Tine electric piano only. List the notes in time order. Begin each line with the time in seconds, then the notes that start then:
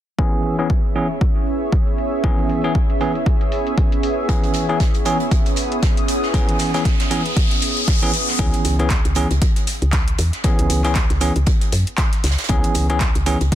0.18 E3 B3 C#4 G#4
0.59 E3 B3 C#4 G#4
0.95 E3 B3 C#4 G#4
2.24 E3 B3 C#4 G#4
2.64 E3 B3 C#4 G#4
3.01 E3 B3 C#4 G#4
4.29 E3 B3 C#4 G#4
4.69 E3 B3 C#4 G#4
5.06 E3 B3 C#4 G#4
6.34 E3 B3 C#4 G#4
6.74 E3 B3 C#4 G#4
7.11 E3 B3 C#4 G#4
8.02 E3 B3 C#4 G#4
8.39 E3 B3 C#4 G#4
8.79 E3 B3 C#4 G#4
9.16 E3 B3 C#4 G#4
10.44 E3 B3 C#4 G#4
10.84 E3 B3 C#4 G#4
11.21 E3 B3 C#4 G#4
12.49 E3 B3 C#4 G#4
12.90 E3 B3 C#4 G#4
13.26 E3 B3 C#4 G#4